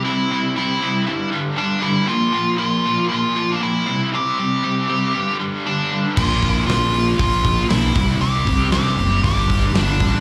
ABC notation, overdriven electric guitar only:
X:1
M:4/4
L:1/8
Q:1/4=118
K:Cmix
V:1 name="Overdriven electric guitar" clef=bass
[C,G,C] [C,G,C] [C,G,C] [C,G,C] [G,,D,G,] [G,,D,G,] [G,,D,G,] [G,,D,G,] | [B,,F,B,] [B,,F,B,] [B,,F,B,] [B,,F,B,] [B,,F,B,] [B,,F,B,] [B,,F,B,] [C,G,C] | [C,G,C] [C,G,C] [C,G,C] [C,G,C] [G,,D,G,] [G,,D,G,] [G,,D,G,] [G,,D,G,] | [B,,F,B,] [B,,F,B,] [B,,F,B,] [B,,F,B,] [B,,F,B,] [B,,F,B,] [B,,F,B,] [C,G,C] |
[C,G,C] [C,G,C] [C,G,C] [C,G,C] [G,,D,G,] [G,,D,G,] [G,,D,G,] [G,,D,G,] |]